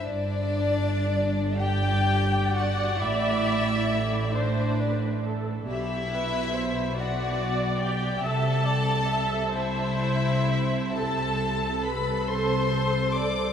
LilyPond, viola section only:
\new Staff \with { instrumentName = "Viola section" } { \time 6/8 \key g \major \tempo 4. = 45 r4. d''4.~ | d''4. c''8 b'8 a'8 | g'8 b'8 c''8 d''4. | e''8 d''8 e''8 c''4. |
a'2. | }